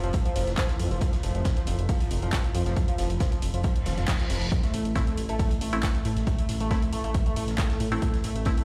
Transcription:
Already playing: A2 E3
0.04 F1 F3, closed hi-hat
0.13 kick, closed hi-hat
0.25 F3, closed hi-hat
0.36 F1 F3, closed hi-hat, open hi-hat
0.47 F1, snare, closed hi-hat
0.58 F3, kick, snare, clap, closed hi-hat
0.69 F3, snare, closed hi-hat
0.80 F2, closed hi-hat, open hi-hat
0.91 F1 F3, open hi-hat
1.01 F3, kick, closed hi-hat
1.13 snare, closed hi-hat
1.23 F1 F3, closed hi-hat, open hi-hat
1.35 F1 F3, closed hi-hat
1.45 kick, snare, closed hi-hat
1.57 F3, closed hi-hat
1.67 F1 F3, closed hi-hat, open hi-hat
1.79 F1, closed hi-hat
1.89 F3, kick, closed hi-hat, open hi-hat
2.01 F3, closed hi-hat
2.10 F1, closed hi-hat, open hi-hat
2.22 F1 F3, closed hi-hat
2.32 F3, kick, snare, clap, closed hi-hat
2.44 closed hi-hat
2.55 F2 F3, closed hi-hat, open hi-hat
2.66 F1 F3, snare, closed hi-hat
2.77 kick, closed hi-hat
2.88 F3, closed hi-hat
2.98 F1 F3, snare, closed hi-hat, open hi-hat
3.10 F1, closed hi-hat
3.20 F3, kick, snare, closed hi-hat
3.32 F3, closed hi-hat
3.42 F1, closed hi-hat, open hi-hat
3.54 F1 F3, closed hi-hat
3.63 F3, kick, closed hi-hat, reverse cymbal
3.76 closed hi-hat
3.85 D#1 F3, snare, closed hi-hat, open hi-hat
3.98 F1 F3, snare, closed hi-hat
4.07 kick, snare, clap, closed hi-hat
4.20 F3, snare, closed hi-hat
4.30 F1 F3, snare, closed hi-hat, open hi-hat
4.41 F1, open hi-hat
4.52 A2 E3, kick, closed hi-hat
4.63 A3, snare, closed hi-hat
4.74 A1 A3, closed hi-hat, open hi-hat
4.85 A1, closed hi-hat
4.95 A3 C4 E4, kick, snare, closed hi-hat
5.07 A3, closed hi-hat
5.17 A1, closed hi-hat, open hi-hat
5.29 A1 A3, closed hi-hat
5.39 A3, kick, closed hi-hat, open hi-hat
5.51 closed hi-hat
5.61 A1 A3, closed hi-hat, open hi-hat
5.73 A1 A3 C4 E4, closed hi-hat
5.83 kick, snare, clap, closed hi-hat
5.95 A3, closed hi-hat
6.05 A2 A3, closed hi-hat, open hi-hat
6.16 A1, snare, closed hi-hat
6.27 A3, kick, closed hi-hat
6.39 A3, closed hi-hat
6.48 A1, snare, closed hi-hat, open hi-hat
6.60 A1 A3, closed hi-hat
6.71 A3 C4 E4, kick, snare, closed hi-hat
6.82 closed hi-hat
6.93 A1 A3, closed hi-hat, open hi-hat
7.04 A1 A3, closed hi-hat
7.14 kick, closed hi-hat
7.26 A3, closed hi-hat
7.36 A1 A3, closed hi-hat, open hi-hat
7.47 A1, snare, closed hi-hat
7.58 A3, kick, snare, clap, closed hi-hat
7.70 A3, snare, closed hi-hat
7.80 A2, closed hi-hat, open hi-hat
7.92 A1 A3 C4 E4, open hi-hat
8.02 A3, kick, closed hi-hat
8.14 snare, closed hi-hat
8.24 A1 A3, closed hi-hat, open hi-hat
8.36 A1 A3, closed hi-hat
8.45 A3 C4 E4, kick, snare, closed hi-hat
8.57 A3, closed hi-hat

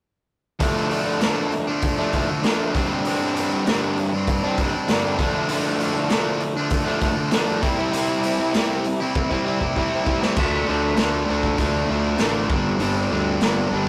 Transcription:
0.60 D3 F3 A3 D4, kick, open hi-hat
0.77 F3 A3 D4
0.91 D3 F3 A3 D4, open hi-hat
1.06 F3 A3 D4
1.21 D3 F3 A3 D4, snare, open hi-hat
1.52 muted distorted electric guitar stroke, open hi-hat
1.67 F3 A3 D4, muted overdriven electric guitar stroke
1.82 kick, open hi-hat
1.99 F3 A3 D4
2.12 D3 F3 A3 D4, kick, open hi-hat
2.30 muted overdriven electric guitar stroke
2.43 D3 F3 A3 D4, snare, open hi-hat
2.57 F3 A3 D4
2.73 G2 D3 G3 C4 D4, kick, open hi-hat
2.89 C4 D4
2.93 G3
3.05 G2 D3 G3 C4 D4, open hi-hat
3.20 G3 C4 D4
3.35 D3 G3 C4 D4, open hi-hat
3.51 G3 C4 D4
3.66 G2 D3 G3 C4 D4, snare, open hi-hat
3.97 muted distorted electric guitar stroke, open hi-hat
4.13 G3 C4 D4, muted overdriven electric guitar stroke
4.27 kick, open hi-hat
4.43 G3 C4 D4
4.58 D3 G3 C4, kick, open hi-hat
4.62 D4
4.73 muted overdriven electric guitar stroke
4.88 G2 D3 G3, snare, open hi-hat
4.93 C4 D4
5.05 G3 C4 D4
5.19 D3 F3 A3 D4, kick, open hi-hat
5.33 F3 A3 D4
5.49 D3 F3 A3 D4, open hi-hat
5.65 F3 A3 D4
5.78 D3 F3 A3 D4, open hi-hat
5.94 F3 A3 D4
6.09 D3 F3 A3 D4, snare, open hi-hat
6.40 muted distorted electric guitar stroke, open hi-hat
6.56 A3 D4, muted overdriven electric guitar stroke
6.60 F3
6.70 kick, open hi-hat
6.86 F3 A3 D4
7.01 D3 F3 A3 D4, kick, open hi-hat
7.16 muted overdriven electric guitar stroke
7.31 D3 F3 A3 D4, snare, open hi-hat
7.47 F3 A3 D4
7.61 C3 G3 C4 E4, kick, open hi-hat
7.77 G3 C4 E4
7.93 C3 G3 C4 E4, open hi-hat
8.08 G3 C4 E4
8.22 C3 G3 C4 E4, open hi-hat
8.38 G3 C4 E4
8.53 C3 G3 C4, snare, open hi-hat
8.57 E4
8.84 muted distorted electric guitar stroke, open hi-hat
9.00 G3 C4 E4, muted overdriven electric guitar stroke
9.15 kick
9.31 G3 C4 E4, kick
9.45 C3 G3 C4 E4
9.61 muted overdriven electric guitar stroke, kick
9.76 C3 G3 C4, kick
9.80 E4
9.93 G3 C4 E4
10.07 C3 G3 C4, kick
10.11 E4
10.22 G3 C4 E4, snare
10.36 D2 D3 F3 A3 D4, kick, crash
10.67 D2 D3 F3 A3 D4
10.97 D2 D3 F3 A3 D4, snare, open hi-hat
11.29 D2 D3 F3 A3 D4
11.43 kick
11.58 D2 D3 F3 A3 D4, kick, open hi-hat
11.89 D2 D3 F3 A3 D4
12.18 A1 D3 F3 A3 D4, snare, open hi-hat
12.50 G1 G2 D3 G3 C4 D4, kick
12.80 G1 G2 D3 G3 C4 D4, open hi-hat
13.11 D2 G2 D3 G3 C4 D4
13.41 G1 G2 D3 G3 C4 D4, snare, open hi-hat
13.71 G1 G2 D3 G3 C4 D4

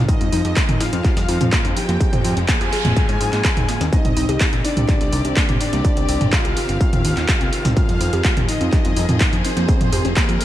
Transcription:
Already playing: D#3
0.08 F3 G#3 C4 D#4 D#5, kick, closed hi-hat, tambourine
0.21 F2 G3, closed hi-hat
0.32 F2 D#4, open hi-hat, tambourine
0.45 F2 G4, snare, closed hi-hat
0.56 A#3, kick, snare, clap, closed hi-hat, tambourine
0.69 D#2 C4, closed hi-hat, mid tom
0.80 D#4 F4 F5, snare, open hi-hat, tambourine
0.93 F2 C4, closed hi-hat
1.05 G4, kick, clap, closed hi-hat, tambourine
1.17 F2 G3, snare, closed hi-hat, tambourine
1.29 F2 D#4, open hi-hat
1.41 F2 C4, closed hi-hat, mid tom, tambourine
1.53 A#3, kick, snare, clap, closed hi-hat, tambourine
1.65 F2 D4, closed hi-hat
1.76 D#4 G4 G5, open hi-hat, tambourine
1.89 F2 A#3, snare, closed hi-hat
2.00 F4 G#4, kick, closed hi-hat, tambourine, noise sweep
2.13 F2 C5, closed hi-hat, mid tom
2.24 F2 G4, open hi-hat, tambourine
2.37 F1 C4, snare, closed hi-hat
2.48 A#3 G#4 G#5, kick, snare, clap, closed hi-hat, tambourine
2.61 F2 G4, closed hi-hat
2.73 G#4, open hi-hat
2.85 F1 A#3, closed hi-hat, mid tom
2.97 A#3, kick, closed hi-hat, tambourine
3.09 G#2 C5, closed hi-hat
3.21 G#2 C4, open hi-hat, tambourine
3.33 G#2 A#3, snare, clap, closed hi-hat
3.45 C4, kick, snare, clap, closed hi-hat, tambourine
3.57 D#2 D#4, closed hi-hat, mid tom
3.68 A#3, snare, open hi-hat, tambourine
3.81 D#2 C4, snare, closed hi-hat, tambourine
3.92 C3 D#3 C4 D#4 G4 D#5, kick, closed hi-hat, tambourine
4.05 C2 G3, closed hi-hat, mid tom
4.16 C2 D#4, open hi-hat, tambourine
4.29 C2 G4, snare, closed hi-hat
4.40 A#3, kick, snare, clap, closed hi-hat, tambourine
4.53 A#1 C4, closed hi-hat
4.64 D4 D#4 D5, open hi-hat, tambourine
4.77 C2 C4, closed hi-hat, mid tom
4.89 G4, kick, clap, closed hi-hat, tambourine
5.01 C2 G3, snare, closed hi-hat
5.12 C2 D#4, open hi-hat, tambourine
5.25 C2 C4, closed hi-hat
5.37 A#3, kick, snare, clap, closed hi-hat, tambourine
5.49 C2 D4, closed hi-hat, mid tom
5.61 D4 D#4 D5, open hi-hat, tambourine
5.73 C2 A#3, snare, closed hi-hat
5.85 G4, kick, closed hi-hat, tambourine
5.97 C2 C5, closed hi-hat
6.09 C2 G4, open hi-hat, tambourine
6.21 G1 C4, snare, closed hi-hat, mid tom
6.33 A#3 F4 F5, kick, snare, clap, closed hi-hat, tambourine
6.45 C2 G4, closed hi-hat
6.57 G4, open hi-hat
6.69 G1 A#3, closed hi-hat
6.81 A#3, kick, closed hi-hat, tambourine
6.93 D#2 C5, closed hi-hat, mid tom
7.05 D#2 D4, open hi-hat, tambourine
7.17 D#2 A#3, snare, clap, closed hi-hat
7.29 G4, kick, snare, clap, closed hi-hat, tambourine
7.41 C2 C4, closed hi-hat
7.53 G4, open hi-hat
7.65 C2 D#4, snare, closed hi-hat, mid tom, tambourine
7.76 F3 C4 F4 G#4 F5, kick, closed hi-hat, tambourine
7.89 F2 G3, closed hi-hat
8.01 F2 D#4, open hi-hat, tambourine
8.13 F2 G4, snare, closed hi-hat
8.25 A#3, kick, snare, clap, closed hi-hat, tambourine
8.37 D#2 C4, closed hi-hat, mid tom
8.49 D#4 D#5, open hi-hat, tambourine
8.61 F2 C4, closed hi-hat
8.73 G4, kick, clap, closed hi-hat, tambourine
8.85 F2 G3, snare, closed hi-hat
8.97 F2 D#4, open hi-hat, tambourine
9.09 F2 C4, closed hi-hat, mid tom
9.21 A#3, kick, snare, clap, closed hi-hat, tambourine
9.33 F2 D4, closed hi-hat
9.44 C4 D#4 C5, open hi-hat, tambourine
9.57 F2 A#3, snare, closed hi-hat
9.68 G#4, kick, closed hi-hat, tambourine
9.81 F2 C5, closed hi-hat, mid tom
9.93 F2 G4, open hi-hat, tambourine
10.05 F1 C4, snare, closed hi-hat
10.16 A#3 A#4, kick, snare, clap, closed hi-hat, tambourine
10.29 F2 G4, closed hi-hat
10.40 G#4, open hi-hat

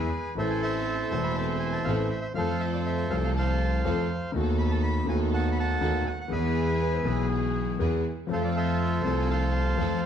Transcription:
Already playing: G#4 B4
0.35 A1 A2 E3 A3 C4 E4 A4 C5 E5
0.40 A4
0.50 G#5
0.62 C5 E5 A5
1.10 E1 E2 E3 A3 C4 E4 A4 A5
1.24 B5
1.35 C5 E5 A5
1.59 G#5
1.72 A5
1.84 A1 A2 E3 A3 C4 E4 A4 F5
2.10 E5
2.21 E5
2.34 F2 F3 A3 C4 F4 A4 F5
2.38 C5
2.59 E5
2.73 D5
2.86 E5
3.08 C2 C3 F3 A3 C4 F4 A4 F5
3.12 A4
3.24 F5
3.37 C5 F5 A5
3.85 F2 F3 A3 C4 F4 A4
4.32 D#2 D#3 A3 B3 D#4 F#4 A4
4.58 B5
4.70 A5
4.83 B5
5.06 D#2 D#3 A3 B3 D#4 F#4 A4 G#5
5.34 F#5 A5
5.52 B5
5.59 F#5 A5
5.81 D#2 D#3 A3 B3 D#4 F#4 A4
6.06 F#5 G#5
6.21 F#5
6.28 E2 E3 G#3 B3 E4 G#4 B4 E5
6.32 B3 G#4
6.81 B4
6.93 B4 C5
7.03 B1 B2 E3 G#3 B3 E4 G#4
7.79 E2 E3 G#3 B3 E4 G#4
8.27 F2 F3 A3 C4
8.31 F4 A4 C5
8.40 E5
8.45 D5
8.56 A4 C5 E5
9.02 C2 C3 F3 A3 C4 F4 A4 A5
9.06 A4
9.19 G#5
9.30 C5 F5 A5
9.77 F2 F3 A3 C4 F4 A4

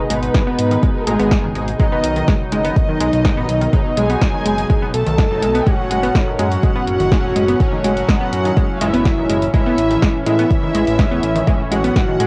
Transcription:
Already playing: B2 G#3 D#4
0.10 G#1 G#3 B3 B4, closed hi-hat
0.23 closed hi-hat
0.34 G#3, kick, snare, closed hi-hat
0.47 B3
0.59 G#2, closed hi-hat
0.71 D#3, closed hi-hat
0.83 G#3, kick, closed hi-hat
1.07 G#1 B2 G#3 D#4 G#4, closed hi-hat
1.19 G#1 B3, closed hi-hat
1.31 kick, snare, closed hi-hat
1.44 F#1 D#3
1.55 G#1 G#3, closed hi-hat
1.68 closed hi-hat
1.79 B2 F#3 G#3 D#4 D#5, kick, closed hi-hat
1.92 B3
2.04 B1, closed hi-hat
2.16 D#3, closed hi-hat
2.28 G#3, kick, snare, closed hi-hat
2.52 F#1 G#3 D#4 D#5, closed hi-hat
2.65 B3, closed hi-hat
2.76 kick, closed hi-hat
2.89 D#3
3.00 B1 G#3, closed hi-hat
3.13 B1, closed hi-hat
3.25 B2 F#3 G#3 D#4, kick, snare, closed hi-hat
3.37 A1 B3
3.49 B1, closed hi-hat
3.61 D#3, closed hi-hat
3.73 B2 F#3 G#3 D#4, kick, closed hi-hat
3.97 B1 G#3 G#4 G#5, closed hi-hat
4.10 B3, closed hi-hat
4.21 kick, snare, closed hi-hat
4.34 D#3
4.45 F#1 G#3, closed hi-hat
4.58 closed hi-hat
4.70 G#3, kick, closed hi-hat
4.82 B3
4.94 B1 A4 A5, closed hi-hat
5.06 B1 D#3, closed hi-hat
5.18 G#3, kick, snare, closed hi-hat
5.31 F#1 B2 F#3 D#4
5.42 B1 G#3, closed hi-hat
5.55 B3, closed hi-hat
5.66 A2 F#3 G#3 C#4 F#4 F#5, kick, closed hi-hat
5.91 F#1 G#3, closed hi-hat
6.03 B3, closed hi-hat
6.15 kick, snare, closed hi-hat
6.27 D#3
6.39 F#2 G#3 F#4 F#5, closed hi-hat
6.52 closed hi-hat
6.63 G#3, kick, closed hi-hat
6.76 B3
6.88 F#1, closed hi-hat
7.00 F#1 D#3, closed hi-hat
7.12 A2 F#3 G#3 C#4, kick, snare, closed hi-hat
7.24 E1
7.36 F#1 G#3, closed hi-hat
7.48 B3, closed hi-hat
7.60 A2 F#3 C#4, kick, closed hi-hat
7.73 D#3
7.84 F#1 G#3 F#4 F#5, closed hi-hat
7.97 closed hi-hat
8.08 G#3, kick, snare, closed hi-hat
8.21 B3
8.33 F#2, closed hi-hat
8.45 D#3, closed hi-hat
8.57 G#3, kick, closed hi-hat
8.81 F#1 A2 F#3 G#3 C#4 E4 E5, closed hi-hat
8.94 F#1 B3, closed hi-hat
9.05 kick, snare, closed hi-hat
9.18 E1 D#3
9.29 F#1 G#3, closed hi-hat
9.42 closed hi-hat
9.54 A2 E3 G#3 C#4 E4 E5, kick, closed hi-hat
9.66 B3
9.78 A1, closed hi-hat
9.90 D#3, closed hi-hat
10.02 G#3, kick, snare, closed hi-hat
10.26 A2 G#3 E4 E5, closed hi-hat
10.39 B3, closed hi-hat
10.51 kick, closed hi-hat
10.63 D#3
10.75 A1 G#3, closed hi-hat
10.87 A1, closed hi-hat
10.99 A2 E3 G#3 C#4, kick, snare, closed hi-hat
11.11 E1 B3
11.23 A1, closed hi-hat
11.35 D#3, closed hi-hat
11.47 A2 E3 G#3 C#4, kick, closed hi-hat
11.71 A1 G#3 F#4 F#5, closed hi-hat
11.84 B3, closed hi-hat
11.96 kick, snare, closed hi-hat
12.08 D#3
12.20 A2 G#3, closed hi-hat

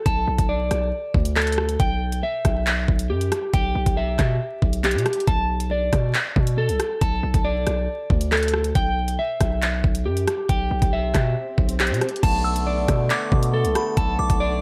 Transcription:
Already playing: A4 D5
0.06 B1 A5, kick, closed hi-hat
0.27 B1
0.38 B1, kick, closed hi-hat
0.49 D5
0.71 B1, cross-stick, closed hi-hat
1.14 D2, kick
1.25 closed hi-hat
1.36 A4, clap, closed hi-hat
1.42 closed hi-hat
1.47 closed hi-hat
1.52 closed hi-hat
1.58 cross-stick
1.69 closed hi-hat
1.80 B1 G5, kick, closed hi-hat
2.12 closed hi-hat
2.23 E5
2.45 B1, kick, cross-stick, closed hi-hat
2.67 clap, closed hi-hat
2.88 B1, kick
2.99 closed hi-hat
3.10 F#2 G4
3.21 closed hi-hat
3.32 cross-stick, closed hi-hat
3.54 B1 G5, kick, closed hi-hat
3.75 B1
3.86 B1, kick, closed hi-hat
3.97 E5
4.19 B2, kick, cross-stick, clap, closed hi-hat
4.62 B1, kick
4.73 closed hi-hat
4.84 G4, clap, closed hi-hat
4.91 B2, closed hi-hat
4.98 closed hi-hat
5.06 cross-stick, closed hi-hat
5.13 closed hi-hat
5.20 closed hi-hat
5.27 B1 A5, kick, closed hi-hat
5.60 closed hi-hat
5.71 D5
5.93 B2, kick, cross-stick, closed hi-hat
6.14 clap, closed hi-hat
6.36 B2, kick
6.47 closed hi-hat
6.58 A4
6.69 C2, closed hi-hat
6.80 cross-stick, closed hi-hat
7.01 B1 A5, kick, closed hi-hat
7.23 B1
7.34 B1, kick, closed hi-hat
7.45 D5
7.67 B1, cross-stick, closed hi-hat
8.10 D2, kick
8.21 closed hi-hat
8.32 A4, clap, closed hi-hat
8.37 closed hi-hat
8.43 closed hi-hat
8.48 closed hi-hat
8.54 cross-stick
8.64 closed hi-hat
8.75 B1 G5, kick, closed hi-hat
9.08 closed hi-hat
9.19 E5
9.40 B1, kick, cross-stick, closed hi-hat
9.62 clap, closed hi-hat
9.84 B1, kick
9.95 closed hi-hat
10.06 F#2 G4
10.17 closed hi-hat
10.28 cross-stick, closed hi-hat
10.49 B1 G5, kick, closed hi-hat, swell
10.71 B1
10.82 B1, kick, closed hi-hat
10.93 E5
11.14 B2, kick, cross-stick, clap, closed hi-hat
11.58 B1, kick
11.69 closed hi-hat
11.80 G4, clap, closed hi-hat
11.87 B2, closed hi-hat
11.94 closed hi-hat
12.01 cross-stick, closed hi-hat
12.09 closed hi-hat
12.16 closed hi-hat
12.23 B1 D3 A3 B3 A5, kick, closed hi-hat, crash
12.44 E6
12.56 closed hi-hat
12.67 D5
12.88 B2, kick, cross-stick, closed hi-hat
13.10 D6, clap, closed hi-hat
13.32 B2, kick
13.43 closed hi-hat
13.54 A4
13.64 C2, closed hi-hat
13.75 B5, cross-stick, closed hi-hat
13.97 B1 A5, kick, closed hi-hat
14.19 B1 D6
14.30 B1, kick, closed hi-hat
14.40 D5

